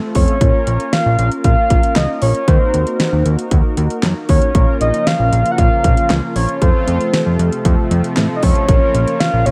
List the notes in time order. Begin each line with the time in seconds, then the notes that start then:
Already playing: A3 C4 F4 A4
0.15 F2 C#5, kick, open hi-hat
0.28 closed hi-hat
0.41 A#1 A#3 C#4 F4 A#4, kick, closed hi-hat
0.67 A#1, closed hi-hat
0.80 closed hi-hat
0.93 F5, snare, closed hi-hat
1.06 A#1
1.18 A#1 F5, closed hi-hat
1.32 closed hi-hat
1.44 A#1 F5, kick, closed hi-hat
1.70 A#1, kick, closed hi-hat
1.83 closed hi-hat
1.96 C#2 D#5, snare, clap, closed hi-hat
2.22 A#1 C#5, open hi-hat
2.35 closed hi-hat
2.48 D#2 A#3 D#4 F#4 A#4 C5, kick, closed hi-hat
2.74 D#2, closed hi-hat
2.87 closed hi-hat
3.00 snare, closed hi-hat
3.13 D#2
3.25 D#2, closed hi-hat
3.39 closed hi-hat
3.51 D#2, kick, closed hi-hat
3.77 D#2, closed hi-hat
3.90 closed hi-hat
4.03 F#2, snare, clap, closed hi-hat
4.29 D#2 C#5, kick, open hi-hat
4.42 closed hi-hat
4.55 A#1 C#3 F3 A#3 C#4 F4 A#4, kick, closed hi-hat
4.81 A#1 D#5, closed hi-hat
4.94 closed hi-hat
5.07 F5, snare, closed hi-hat
5.19 A#1
5.32 A#1, closed hi-hat
5.46 closed hi-hat
5.52 F#5
5.58 A#1 F5, kick, closed hi-hat
5.84 A#1, kick, closed hi-hat
5.97 closed hi-hat
6.10 C#2, snare, clap, closed hi-hat
6.36 A#1 C#5, open hi-hat
6.49 closed hi-hat
6.62 F2 C3 F3 A3 C4 F4 A4 C5, kick, closed hi-hat
6.87 F2, closed hi-hat
7.01 closed hi-hat
7.14 snare, closed hi-hat
7.26 F2
7.39 F2, closed hi-hat
7.52 closed hi-hat
7.65 F2, kick, closed hi-hat
7.91 F2, closed hi-hat
8.04 closed hi-hat
8.17 A2, snare, clap, closed hi-hat
8.36 D#5
8.43 F2 C#5, kick, open hi-hat
8.55 closed hi-hat
8.69 A#1 C#3 A#3 C#4 F4 A#4, kick, closed hi-hat
8.94 A#1, closed hi-hat
9.08 closed hi-hat
9.20 F5, snare, closed hi-hat
9.33 A#1
9.46 A#1 C#5, closed hi-hat